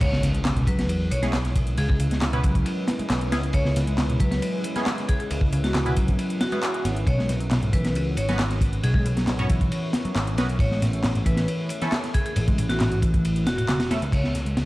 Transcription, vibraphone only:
0.01 C#5
0.67 B4
0.79 B4
1.11 C#5
1.78 G#4
1.89 G#4
3.54 C#5
4.20 B4
4.31 B4
5.08 G#4
5.20 G#4
5.64 F#4
5.75 F#4
6.41 F#4
6.52 F#4
6.63 F#4
7.07 C#5
7.73 B4
7.85 B4
8.17 C#5
8.84 G#4
8.95 G#4
10.60 C#5
11.26 B4
11.37 B4
12.14 G#4
12.26 G#4
12.69 F#4
12.81 F#4
13.47 F#4
13.58 F#4
13.69 F#4
14.13 C#5

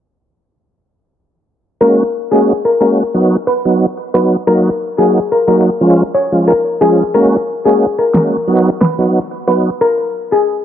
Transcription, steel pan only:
1.81 A#4
2.32 G#4
2.65 A#4
2.81 A#4
3.47 B4
4.14 B4
4.47 A#4
4.98 G#4
5.32 A#4
5.48 A#4
6.14 C#5
6.48 A#4
6.81 G#4
7.14 A#4
7.65 G#4
7.99 A#4
8.14 A#4
8.81 B4
9.47 B4
9.81 A#4
10.32 G#4

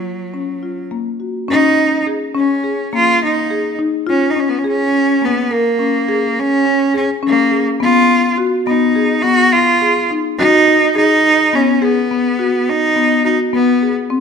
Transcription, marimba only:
Already playing: F4
0.34 C#4
0.63 F4
0.91 A#3
1.20 F#4
1.48 C#4
2.07 G#4
2.35 C#4
2.64 G#4
2.93 A#3
3.50 G#4
3.79 D#4
4.07 F4
4.36 C#4
4.64 G#4
5.22 A#3
5.51 A#4
5.79 C#4
6.09 G#4
6.66 C#4
6.94 G#4
7.23 C#4
7.51 G#4
7.80 B3
8.38 F#4
8.67 B3
8.95 G#4
9.24 B3
9.81 G#4
10.11 D#4
10.39 F#4
10.68 D#4
10.95 G#4
11.53 B3
11.82 G#4
12.11 B3
12.39 F#4
12.96 B3
13.24 F#4
13.53 B3
13.82 G#4
14.10 C4

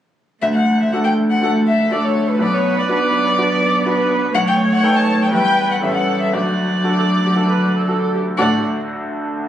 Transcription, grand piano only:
0.42 D2
0.93 D4 F#4 A4
1.41 D4 F#4 A4
1.91 D4 F#4 A4
2.39 B1
2.89 D4 F#4 B4
3.38 D4 F#4 B4
3.85 D4 F#4 B4
4.35 B1
4.83 D#4 A4 B4
5.32 E2 E4 G4 B4
5.82 A1 C#4 G4 B4
6.33 D2
6.84 D4 F#4 A4
7.36 D4 F#4 A4
7.88 D4 F#4 A4
8.38 D2 D3 D4 F#4 A4 F#5

